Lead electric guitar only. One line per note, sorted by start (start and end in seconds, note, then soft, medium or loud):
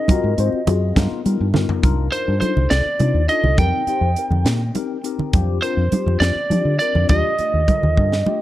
0.00 1.21 D#5 medium
2.12 2.39 C5 medium
2.41 2.71 C5 medium
2.70 3.29 D5 medium
3.29 3.56 D#5 medium
3.59 5.01 G5 medium
5.62 6.17 C5 medium
6.20 6.78 D5 medium
6.79 7.09 D5 medium
7.09 8.42 D#5 medium